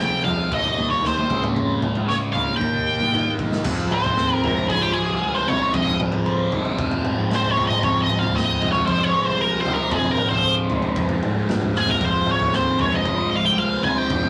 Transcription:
Already playing: F2 G#3 C4 F4 G#4
0.00 C3 F3 G5
0.25 F2 C3 F3 F5, floor tom, low conga
0.50 D#2 D#3 G3 A#3 D#4 G4 D#5, kick, floor tom
0.65 floor tom
0.78 floor tom, high conga
0.90 D#2 C#5
1.02 D#3 A#3 D#4, snare
1.06 C5
1.17 floor tom, high conga
1.29 C#2 C#3 G#3 C#4 F4 G#4, kick, floor tom, low conga
1.43 mid tom, high conga
1.55 F2 C#3 G#3 C#4, floor tom
1.70 high conga
1.82 G#3 C#4, floor tom, mid tom
1.95 C#3, floor tom
2.06 C#3 G#3 C#4 C#5, snare
2.31 G#3 C#4 F5, low conga
2.35 C#2, floor tom
2.48 high conga
2.56 D#3 G5
2.60 D#2 A#3 D#4 G4, kick
2.64 A#4
2.74 high tom
2.87 high conga
3.00 D#3, mid tom, high conga
3.12 D#3 A#3 D#4, mid tom, high conga
3.26 high conga
3.39 C2 A#3 D#4, kick, low conga
3.51 snare, low conga
3.64 F2 F4 C5, kick, floor tom, crash
3.68 C4 G#4
3.91 C5, mid tom
4.04 D#2, floor tom
4.17 C4, snare
4.35 A#4
4.44 F2 G#3 A#4, floor tom
4.56 floor tom
4.68 F2 F3 G#4, kick, floor tom
4.82 G4
4.93 G#3 G#4
5.10 C2
5.22 F3
5.34 C5
5.46 C2 C4 C#5, floor tom
5.74 F2 D#5, kick, floor tom
5.87 floor tom
6.00 mid tom
6.12 F3, floor tom
6.26 C4, kick
6.51 D#2 G#3, floor tom
6.65 floor tom
6.78 F2 F3, kick, floor tom
6.91 floor tom
7.04 G#3, mid tom
7.18 G#2
7.31 F3, snare, mid tom
7.35 C5
7.44 floor tom
7.51 C#5
7.56 F2 C4, floor tom
7.67 D#5, mid tom
7.83 F2 C#5, kick, floor tom
8.02 D#5
8.09 mid tom
8.19 D#2 F5
8.23 floor tom
8.35 C4 D#5, snare
8.61 F2 G#3, floor tom
8.72 C#5, floor tom
8.86 F2 F3 C5, kick, floor tom
9.03 C#5
9.14 G#3
9.25 C2 C5
9.40 F3 A#4
9.60 C5
9.66 C2 C4, floor tom
9.74 A#4
9.91 F2 G#4, kick, floor tom
10.04 floor tom
10.11 A#4
10.17 mid tom
10.29 F3 C5, floor tom
10.44 C4, kick
10.70 D#2 G#3, floor tom
10.82 floor tom
10.96 F2 F3, kick, floor tom
11.09 floor tom
11.23 G#2 G#3, mid tom
11.48 G2 F3, snare, mid tom
11.61 floor tom
11.74 F2 C4 G#4, snare
11.88 A#4, floor tom
12.01 F2, kick, floor tom
12.05 C5
12.26 mid tom
12.31 C#5
12.40 D#2, floor tom
12.52 C4 C5, snare
12.79 F2 G#3 C#5, floor tom
12.93 D#5, floor tom
13.05 F2 F3, kick, floor tom
13.32 G#3 F5
13.44 C2 G5
13.58 F3 F5
13.83 C2 C4 G#5, floor tom
13.98 G5
14.10 F2, kick, floor tom
14.23 floor tom

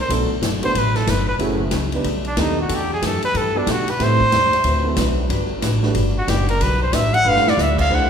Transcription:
0.00 C5
0.08 B1 B2 F#3 A3 B3 D4 F#4 A4, kick, ride
0.29 muted upright bass stroke
0.42 G1 B2 F#3 A3 D4, kick, snare, hi-hat pedal, ride
0.62 A3 B3 D4 F#4 B4 C5, ride
0.74 A1 B2 F#3 A3 D4, kick, ride
0.78 B4
0.95 A4, snare, ride
1.07 G1 B2 F#3 A3 D4 B4, kick, snare, hi-hat pedal, ride
1.29 B4
1.39 F#1 F#3 A3 C#4 E4 F#4 G#4, kick, ride
1.71 C#2 F#3 A3 E4 G#4, kick, snare, hi-hat pedal, ride
1.92 B3 D4 D#4 G4 B4, ride
2.04 B1 B2 G3 A3 D#4, kick, ride
2.25 D4, ride
2.36 D#2 B2 G3 A3 B3 D4 D#4 G4 A4, kick, snare, hi-hat pedal, ride
2.41 D#4
2.61 F#4
2.68 E2 E3 G3 A3 D4 F#4 G4 A4, kick, ride
2.75 G4
2.94 G#4
3.02 F#2 E3 A3 D4 G4, kick, snare, hi-hat pedal, ride
3.06 A4
3.22 B4, muted upright bass stroke, ride
3.34 G2 E3 A3 D4 G4 A4, kick, ride
3.55 B3 D4 F#4 G4 A4
3.66 B2 E3 A3 D4 G4, kick, snare, hi-hat pedal, ride
3.71 F#4
3.88 B4, ride
3.99 A2 G3 A3 C4 E4 G4 B4, kick, snare, ride
4.03 C5
4.20 kick
4.32 E2 A2 G3 C4 E4, kick, snare, hi-hat pedal, ride
4.52 F#3 C4 E4 C5, muted upright bass stroke, ride
4.64 D2 D3 C4 F#4 B4, kick, ride
4.83 A3 C4 E4 F#4 B4
4.96 B1 D3 F#3 C4 E4 F#4 B4, kick, snare, hi-hat pedal, ride
5.28 G1 G3 D4 F#4 B4, kick, ride
5.62 A1 G3 D4 F#4 B4, kick, snare, hi-hat pedal, ride
5.83 A3 D4 F#4 G4 B4, snare
5.94 G1 G3 D4 F#4 B4, kick, ride
6.18 F#4
6.28 F#1 G3 D4 F#4 G4 B4, kick, snare, hi-hat pedal, ride
6.49 A#4, ride
6.60 B1 G3 D4 F#4 B4, kick, ride
6.83 C5
6.93 A1 G3 D4 F#4 B4 E5, kick, snare, hi-hat pedal, ride
7.14 F#5, ride
7.24 G1 G3 A3 D4 F4 G4 B4
7.29 F5
7.36 snare
7.45 muted upright bass stroke, snare
7.49 D5
7.57 D2 G3 D4 F4 B4, snare, hi-hat pedal
7.62 E5
7.78 F5, kick, crash
7.90 C2 A3 D4 E4 G4 C5, kick
7.94 F#5

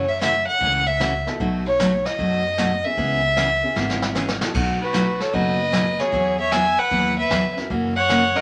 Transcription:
Already playing: F#2 C#5
0.09 E5
0.21 C#3 E3 A3 C#4 F#4 E5, snare, hi-hat pedal
0.47 F#5
0.60 C#2 C#3 E3 A3 C#4 F#4, brush sweep, kick
0.87 E5
1.00 C#3 E3 A3 C#4 F#4, snare, hi-hat pedal
1.26 B3 D#4 F#4 A4, snare
1.40 B1 B2 F#3 A3 D#4 F#4, brush sweep, kick
1.66 C#5
1.80 B2 F#3 A3 D#4 F#4, snare, hi-hat pedal
2.05 D#5, snare
2.18 F#2 B2 F#3 A3 D#4 F#4, brush sweep, kick
2.58 B2 F#3 A3 D#4 F#4, snare, hi-hat pedal
2.84 B3 C#4 E4 G#4 E5
2.97 C#2 C#3 E3 B3 C#4 G#4, brush sweep, kick
3.36 C#3 E3 B3 C#4 G#4, snare, hi-hat pedal
3.63 B3 C#4 E4 G#4
3.75 G#1 C#3 E3 B3 C#4 G#4, snare
3.89 snare
4.02 snare
4.15 C#3 E3 B3 C#4 G#4, snare, hi-hat pedal
4.28 snare
4.41 B3 D#4 F#4 A4, snare
4.54 B1 B2 F#3 A3 D#4 F#4, brush sweep, kick, crash
4.81 F#4 B4
4.93 B2 F#3 A3 D#4 F#4, snare, hi-hat pedal
5.20 A4 C#5, snare
5.33 F#1 B2 F#3 A3 B3 D#4 F#4 A4 B4 D#5, brush sweep, kick
5.72 B2 F#3 A3 D#4 F#4, snare, hi-hat pedal
5.99 B3 E4 F#4 G#4 C#5, snare
6.12 E2 E3 F#3 B3 E4 G#4, brush sweep, kick
6.39 C#5 E5
6.52 E3 F#3 B3 E4 G#4 E5 G#5, snare, hi-hat pedal
6.78 B4 F#5
6.91 D#2 E3 F#3 B3 E4 G#4, brush sweep, kick
7.18 B4 E5
7.30 E2 E3 F#3 B3 E4 G#4, snare, hi-hat pedal
7.56 C#4 E4 F#4 A#4, snare
7.70 F#2 C#3 E3 A#3 C#4 F#4, brush sweep, kick
7.96 C#5 F#5
8.09 C#3 E3 A#3 C#4 F#4, snare, hi-hat pedal
8.35 C#4 E4 F#4 A#4 D#5, snare

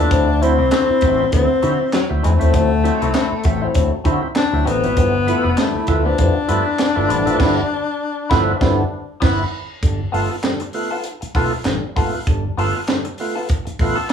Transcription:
Already playing: F3 A3 B3 D4 E4
0.11 D2 D3 F#3 C4 E4, kick, closed hi-hat
0.28 muted clean electric guitar stroke
0.41 F#3 C4 E4, muted clean electric guitar stroke, closed hi-hat
0.58 C2 F#3 C4 E4
0.71 D3 F#3 C4 E4, snare, clap, closed hi-hat
0.89 E4, muted fingered electric bass stroke
1.01 A1 F#3 C4 E4, muted clean electric guitar stroke, kick, closed hi-hat
1.19 F#3 C4 E4
1.32 D2 D3 F#3 C4 E4, kick, closed hi-hat
1.50 muted clean electric guitar stroke
1.62 D3 F#3 C4 E4, closed hi-hat
1.79 C4 E4, muted clean electric guitar stroke
1.92 F#3, muted clean electric guitar stroke, snare, clap, closed hi-hat
2.09 D2 F#3 C4 E4, muted clean electric guitar stroke
2.23 E2 D3 F#3 A3 C4 E4, closed hi-hat
2.39 D#2 F#3 C4 E4, closed hi-hat
2.53 D2 D3 F#3 C4 E4, kick, closed hi-hat
2.71 muted clean electric guitar stroke
2.84 F#3 C4 E4, muted clean electric guitar stroke, closed hi-hat
3.01 C2 F#3 C4 E4, closed hi-hat
3.14 D3 F#3 C4 E4, snare, clap, closed hi-hat
3.32 muted fingered electric bass stroke
3.44 A1 F#3 C4 E4, muted clean electric guitar stroke, kick, closed hi-hat
3.62 F#3 C4 E4
3.75 D2 D3 F#3 C4 E4, kick, closed hi-hat
3.92 muted clean electric guitar stroke
4.04 D3 F#3 C4 E4, kick, closed hi-hat
4.22 C4 E4, muted clean electric guitar stroke
4.35 D4, snare, clap, closed hi-hat
4.52 D2 F#3 C4 E4, muted clean electric guitar stroke
4.65 A1 D3 F#3 B3 C4 E4, closed hi-hat
4.83 G#1 F#3 C4 E4, muted clean electric guitar stroke, closed hi-hat
4.97 G1 G2 D3 F3 B3 E4, kick, closed hi-hat
5.14 muted clean electric guitar stroke
5.27 F3 A3 B3 E4, muted clean electric guitar stroke, closed hi-hat
5.44 F1 F3 B3 E4
5.56 G2 D3 F3 A3 B3 E4, snare, clap, closed hi-hat
5.75 E4, muted fingered electric bass stroke
5.87 D2 F3 A3 B3 E4, muted clean electric guitar stroke, kick, closed hi-hat
6.05 F3 B3 D4 E4
6.18 F2 G2 D3 F3 B3 E4, kick, closed hi-hat
6.36 muted clean electric guitar stroke
6.48 G2 F3 A3 B3 E4, closed hi-hat
6.66 B3 E4, muted clean electric guitar stroke
6.78 muted clean electric guitar stroke, snare, clap, closed hi-hat
6.95 G1 F3 A3 B3 E4, muted clean electric guitar stroke
7.09 A1 G2 D3 F3 B3 E4, closed hi-hat
7.25 G#1 F3 A3 B3 E4, closed hi-hat
7.39 G1 G2 D3 F3 B3 E4, kick, snare, crash
8.30 G1 F3 A3 B3 E4, kick, snare
8.60 G1 G2 D3 F3 B3 E4, kick, snare
9.20 G1 F3 B3 E4, kick, snare, crash
9.83 G1 G2 D3, kick, closed hi-hat
10.12 G1 A3 B3 F4 A4, open hi-hat
10.31 B3 F4
10.43 G2 D3, muted clean electric guitar stroke, snare, clap, closed hi-hat
10.60 muted clean electric guitar stroke, closed hi-hat
10.73 A3 B3 F4, open hi-hat
10.91 B3 F4 A4
11.04 muted clean electric guitar stroke, closed hi-hat
11.21 muted clean electric guitar stroke, muted fingered electric bass stroke, closed hi-hat
11.35 B1 A3 B3 F4 A4, kick, open hi-hat
11.52 muted clean electric guitar stroke
11.65 A1 G2 D3, muted clean electric guitar stroke, snare, clap, closed hi-hat
11.96 G#1 A3 B3 F4 A4, kick, open hi-hat
12.13 B3 F4, muted clean electric guitar stroke
12.27 G1 G2 D3, kick, closed hi-hat
12.58 G1 A3 B3 F4 A4, open hi-hat
12.76 B3 F4
12.87 G2 D3, muted clean electric guitar stroke, snare, clap, closed hi-hat
13.05 muted clean electric guitar stroke, closed hi-hat
13.18 A3 B3 F4, open hi-hat
13.35 B3 F4 A4
13.49 muted clean electric guitar stroke, kick, closed hi-hat
13.65 muted clean electric guitar stroke, muted fingered electric bass stroke, closed hi-hat
13.79 A1 A3 B3 F4, kick, open hi-hat
13.96 B3 F4 A4
14.09 B3, closed hi-hat

